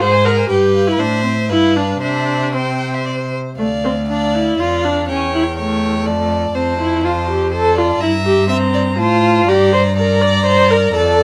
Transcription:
0.00 G#2 G#4 C5 F#5
0.12 C5 G#5
0.24 G#4 A#4 F#5
0.37 C5 G#5
0.49 G2 G4 B4 G5
0.74 F5
0.87 E4
0.99 A2 D4 C5 E5
1.24 C4
1.49 G2 E4 B4 F5
1.77 D4
2.01 C3 D4 C5 E5
2.54 C4 C5 G5
2.94 E5
3.06 D5
3.33 C5
3.58 D2 A3 D5 F5
3.85 C4
4.09 D4 D5 F5
4.34 E4
4.59 F2 F4 D5 F5
4.85 D4
5.08 E2 C#4 C#5 G5
5.34 E4
5.58 A3 C#5 G5
6.06 F2 D5 A5
6.55 F2 C4 C5 A5
6.80 E4
7.03 F4 C5 A5
7.30 G4
7.52 A4 C5 A5
7.76 F4 D5
8.01 G2 E4 E5 A#5
8.26 G4
8.49 C4 E5 A#5
8.74 D5
8.97 A2 F4 C5 A5
9.47 G2 G4 D5 A#5
9.73 C5
9.97 A#4 D5 A#5
10.21 D5
10.46 C5
10.71 A#4
10.94 F2 A4 D5 A5

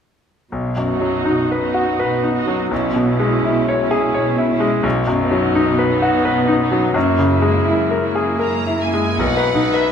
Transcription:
0.52 B1 B2
0.77 F#2
0.88 D#4 F#4
1.01 F#3
1.25 B2 D#4
1.51 B4
1.63 D#4 F#4
1.74 F#4
1.99 B2 B4
2.23 D#4
2.35 D#4 F#4
2.47 F#3
2.71 B1 B2 C#4 E4
2.95 B2
3.08 C#4 E4
3.19 G#3
3.44 B2 E4
3.68 C#5
3.81 C#4 E4
3.91 G#4
4.14 B2 C#5
4.38 E4
4.51 C#4 E4
4.60 G#3
4.83 B1 B2
5.07 F#2
5.19 B3 D#4
5.31 F#3
5.55 B2 D#4
5.79 B4
5.91 B3 D#4
6.02 F#4
6.25 B2 B4
6.47 D#4
6.60 B3 D#4
6.71 F#3
6.94 F#2 A#3 E4
7.18 C#3
7.31 A#3 E4
7.42 G#3
7.65 F#2 E4
7.91 A#4
8.03 A#3 E4
8.15 G#4
8.39 F#2 A#4 A#5
8.67 E4
8.80 A#3 E4 G#5
8.94 G#3
9.18 B1 B2 D#4 B4 F#5
9.37 B4
9.54 B1 B2 D#4 B4
9.72 B4 E5

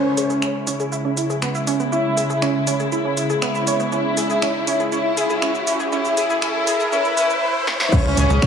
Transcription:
Already playing: C#3 G#3 C#4 E4, riser
0.17 G#4, open hi-hat, shaker
0.30 G#4, shaker
0.42 C#4, finger snap, shaker
0.67 C#4, open hi-hat, shaker
0.80 G#4, shaker
0.92 E4, shaker
1.05 C#4
1.17 E4, open hi-hat, shaker
1.30 G#4, shaker
1.42 B3, finger snap, shaker
1.55 E4, shaker
1.67 C#4, open hi-hat, shaker
1.80 B3, shaker
1.92 C#4 E4, shaker
2.17 G#4, open hi-hat, shaker
2.30 G#4, shaker
2.42 C#4, finger snap, shaker
2.67 C#4, open hi-hat, shaker
2.80 G#4, shaker
2.92 E4, shaker
3.05 C#4
3.17 E4, open hi-hat, shaker
3.30 G#4, shaker
3.42 B3, finger snap, shaker
3.55 E4, shaker
3.67 C#4, open hi-hat, shaker
3.80 B3, shaker
3.92 C#4 E4, shaker
4.17 G#4, open hi-hat, shaker
4.30 G#4, shaker
4.42 C#4, finger snap, shaker
4.67 C#4, open hi-hat, shaker
4.80 G#4, shaker
4.92 C#4 E4, shaker
5.17 G#4, open hi-hat, shaker
5.30 G#4, shaker
5.42 C#4, finger snap, shaker
5.55 shaker
5.67 C#4, open hi-hat, shaker
5.80 G#4, shaker
5.92 C#4 E4, shaker
6.05 shaker
6.17 G#4, open hi-hat, shaker
6.30 G#4, shaker
6.42 C#4 E4, finger snap, shaker
6.67 G#4, open hi-hat, shaker
6.80 G#4, shaker
6.92 C#4 E4, shaker
7.05 shaker
7.17 C#4 E4, open hi-hat, shaker
7.30 shaker
7.42 E4
7.67 E4, snare
7.80 snare
7.92 C#3 G#3 C#4 E4, kick, crash, impact, shaker
8.05 C#2
8.17 C#2 G#4, open hi-hat, shaker
8.30 C#2 G#4, shaker
8.42 C#4, finger snap, kick, shaker

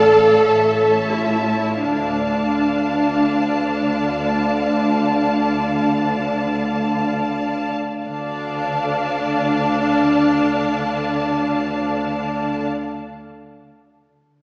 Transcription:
Already playing: A1 A2 A4 D5 F5 A5
0.44 A1 A2 C#5 E5 A5
1.11 E4
1.22 F4
1.31 E4
1.41 F4
1.51 E4
1.81 D2 D3 D4 D5 F5 A5
8.05 D2 D3 D4 D5 F5 A5

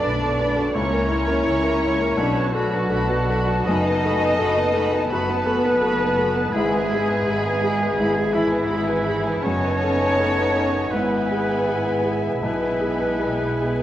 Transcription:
Already playing: F#2 D4 A4 B4 D5 A5
0.03 B1 A3 D4 B4 B5
0.21 B3 F#4 A4 A5
0.39 A3 D4 B4 B5
0.56 B3 F#4 A4 A5
0.74 C#2 A#3 C#4 E4 C#5 A#5 C#6
0.92 A#3 C#4 A#4 A#5
1.09 C#4 E4 C#6
1.27 A#3 C#4 A#4 A#5
1.44 C#2 C#4 E4 C#6
1.63 A#3 C#4 A#4 A#5
1.81 C#4 E4 C#6
2.00 A#3 C#4 A#4 A#5
2.17 B1 A3 D4 A5 B5
2.35 B3 F#4 B4 A5
2.53 F#3 A3 D4 F#4 A4 B5
2.71 B3 F#4 B4 A5
2.90 B1 A3 D4 A4 B5
3.07 B3 F#4 B4 A5
3.28 A3 D4 A4 B5
3.47 B3 F#4 B4 A5
3.66 F#1 F#2 A3 B3 D#4 F#4 D#5 B5
3.85 B3 D#4 B4 A5
4.03 A3 F#4 A4 B5
4.22 B3 D#4 B4 A5
4.39 F#1 A3 F#4 A4 B5
4.56 B3 D#4 B4 A5
4.74 A3 F#4 A4 B5
4.92 B3 D#4 B4 A5
5.10 F#1 F#3 A3 B3 F#4 B4 B5
5.28 B3 D#4 B4 A5
5.45 A3 F#4 A4 B5
5.62 B3 D#4 B4 A5
5.79 F#1 A3 F#4 A4 B5
5.97 B3 D#4 B4 A5
6.15 A3 F#4 A4 B5
6.33 B3 D#4 B4 A5
6.51 G#1 G#3 E4 G#4 E5 B5
6.55 G#2
6.70 B3 G#4 G#5
6.75 B4
6.88 G#3 E4 B5
6.92 G#4
7.07 B3 G#4 B4 G#5
7.25 G#1 G#3 E4 G#4 B5
7.43 B3 G#4 B4 G#5
7.62 G#3 E4 G#4 B5
7.79 B3 G#4 B4 G#5
7.97 G#1 G#2 G#3 E4 B5
8.13 B3 G#4 G#5
8.32 E3 G#3 E4 B5
8.49 B3 G#4 B4 G#5
8.67 G#1 G#3 E4 G#4 B5
8.86 B3 G#4 B4 G#5
9.05 G#3 E4 G#4 B5
9.25 B3 G#4 B4 G#5
9.42 F#1 B3 C#4 D#4 C#5 D#5 A5
9.46 F#2 A3 D#4
9.65 B4
9.84 A4
10.02 B4
10.20 A4
10.38 B4
10.56 A4
10.73 B4
10.91 G#1 G#2 G#3 B3 E4 B4 E5 G#5
11.13 B4
11.31 G#4
11.49 B4
11.68 G#4
11.86 B4
12.03 G#4
12.22 B4
12.43 B1 B2 G#3 B3 E4 B4 G#5
12.62 B4
12.80 G#4
13.00 B4
13.19 G#4
13.38 B4
13.61 G#4
13.79 B4

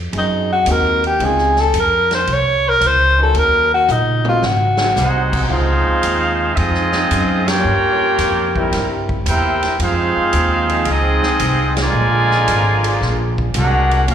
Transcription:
Already playing: F2
0.12 F#2 F#3 C4 D#4 G#4, kick, ride
0.18 D#4
0.53 F#4
0.66 D#2 G#3 A#3 C4 D#4 F#4, kick, hi-hat pedal, ride
0.71 A#4
1.04 G4, ride
1.20 C#2 G#3 C4 C#4 D#4 F4, kick, ride
1.25 G#4
1.38 snare
1.56 snare
1.60 A4
1.74 F2, kick, hi-hat pedal, ride
1.80 A#4
2.11 C5, snare, ride
2.27 C2, kick, ride
2.33 C#5
2.69 A#4
2.81 C#2, kick, hi-hat pedal, ride
2.86 C5
3.17 F#3 C#4 D#4 A#4
3.23 A4
3.34 D#2, kick, ride
3.39 A#4
3.74 F#4
3.88 A#1 D#4, hi-hat pedal, mid tom
4.25 G#3 A#3 C4 D#4 F#4, mid tom
4.29 F4
4.42 G#1 F#4, snare
4.77 F#3 C4 D#4 G#4, snare
4.94 C2 C4 D#4 F#4 G#4 C5 F#5, snare, hi-hat pedal
5.33 kick, crash
5.48 C#2 C#3 F3 G#3 C4 D#4 F4 G#4 C5 F5, kick
5.87 muted upright bass stroke
6.03 D#2, kick, hi-hat pedal, ride
6.55 F2 G#3 C4 D#4 F4 G#4 D#5, kick, ride
6.75 snare
6.92 snare
7.11 F#2, kick, hi-hat pedal, ride
7.45 G3 A#3 C#4 F4 G4 A#4 C#5 G5, snare, ride
7.50 F4
7.65 G2
8.18 F2, kick, snare, hi-hat pedal, ride
8.56 G3 C4 E4 A#4, kick
8.72 G2, kick, snare, ride
9.09 kick
9.26 E2 A#3 E4 G4 A#4 C5 G5, kick, hi-hat pedal, ride
9.62 muted upright bass stroke, snare, ride
9.80 F2 G#3 C4 F4 F5, kick, ride
9.84 D#4 G#4 C5
10.16 muted upright bass stroke
10.33 D#2, kick, hi-hat pedal, ride
10.68 F3 C4 D#4 G#4, ride
10.85 C#2 G#3 C4 D#4, kick, ride
10.91 C4 F4 G#4 D#5
11.23 muted upright bass stroke, snare
11.39 C2, kick, hi-hat pedal, ride
11.77 D3 F3 G#3, snare, ride
11.82 F4 A#4 D5 G#5
11.93 A#1
12.31 snare
12.47 G#1, kick, hi-hat pedal, ride
12.84 F3 A#3 D4 G#4, ride
13.01 A#1, kick, snare
13.38 kick
13.54 C2 G#3 D4 F#4 G#4 A#4 F#5, kick, hi-hat pedal, ride
13.91 ride
14.07 D#2 A#3 C#4 F#4, kick, ride
14.11 F#4 A#4 F5

